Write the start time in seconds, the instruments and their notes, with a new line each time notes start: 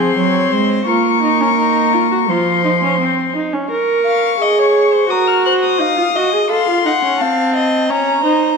Already playing: cello F3, viola C4, violin G#4 C6
0.16 cello F#3, violin C#5
0.51 cello G#3, violin C5
0.87 cello A#3, viola F4, violin A#4 C#6
1.22 viola D#4
1.40 viola C#4
1.57 viola D#4
1.93 viola F4
2.11 viola F#4
2.28 cello F3, viola F4, violin C5 C6
2.65 viola D#4
2.82 viola C#4
3.00 viola C4
3.36 viola D#4
3.53 viola C#4
3.70 viola A#4, violin C#6
4.06 violin F5
4.40 viola G#4, violin D#5
4.59 violin C#5
4.93 violin C5
5.09 viola F#4, violin A#4 D#6
5.27 violin F6
5.45 violin C5 F#6
5.63 violin D#6
5.79 viola D#4, violin F5
5.97 viola F4
6.16 viola F#4, violin D#5
6.33 viola G#4
6.50 viola A4, violin F5 C6
6.68 viola F4
6.85 viola D#4, violin F#5
7.03 viola C#4
7.20 viola C4, violin F5 A5
7.56 violin D#5
7.90 viola C#4, violin C#5 A#5
8.24 viola D#4, violin C5